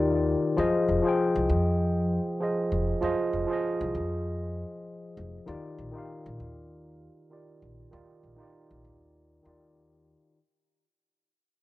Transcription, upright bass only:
Already playing: D#2
0.58 F2
0.88 F1
1.36 C2
1.49 F2
2.72 F1
3.02 F2
3.33 F1
3.81 C2
3.95 F2
5.17 F1
5.48 D#2
5.78 A#1
6.26 A#1
6.40 D#2
7.62 A#1
7.93 D#2
8.23 A#1
8.71 A#1
8.84 D#2
9.45 D#2

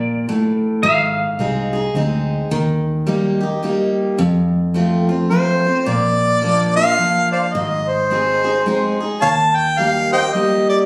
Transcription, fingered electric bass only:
Already playing: A#1
0.83 G#1
1.39 C2
1.94 D2
2.52 D#2
4.19 F2
5.87 A#1
7.55 G#1
9.23 D#2

